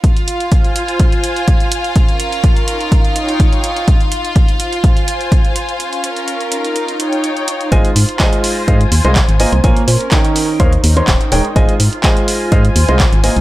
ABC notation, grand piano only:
X:1
M:4/4
L:1/16
Q:"Swing 16ths" 1/4=125
K:Ab
V:1 name="Grand piano"
z16 | z16 | z16 | z16 |
[A,Fcea] z3 [A,Fcea]4 [A,Fcef] z2 [A,Fcec'] z2 [B,Fcea] z | [B,FBda] z3 [E,EBdg]4 [E,EBdf] z2 [E,EBdc'] z2 [A,EBdg] z | [A,Fcea] z3 [A,Fcea]4 [A,Fcef] z2 [A,Fcec'] z2 [B,Fcea] z |]